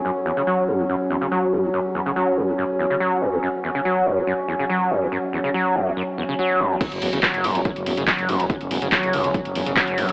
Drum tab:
CC |----------------|----------------|----------------|----------------|
RD |----------------|----------------|----------------|----------------|
HH |----------------|----------------|----------------|----------------|
CP |----------------|----------------|----------------|----------------|
BD |----------------|----------------|----------------|----------------|

CC |x---------------|----------------|
RD |x-x---x-x-x-x-x-|x-x-x-x-x-x-x-x-|
HH |xxoxxxoxxxoxxxox|xxoxxxoxxxoxoxox|
CP |----x-------x---|----x-------x---|
BD |o---o---o---o---|o---o---o---o---|